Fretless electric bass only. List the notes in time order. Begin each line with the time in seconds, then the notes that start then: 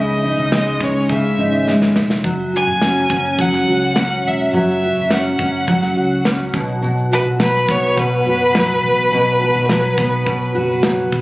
Already playing: C#2
0.37 C#2
0.81 C#2
1.37 G#1
1.95 E1
2.24 F#1
2.67 F#1
3.10 F#1
3.67 C#2
4.24 E1
4.53 F#1
4.96 F#1
5.39 F#1
5.96 C#2
6.53 B1
7.25 B1
7.68 B1
8.25 F#1
8.83 A1
9.12 B1
9.55 B1
9.98 B1
10.55 F#1
11.12 B1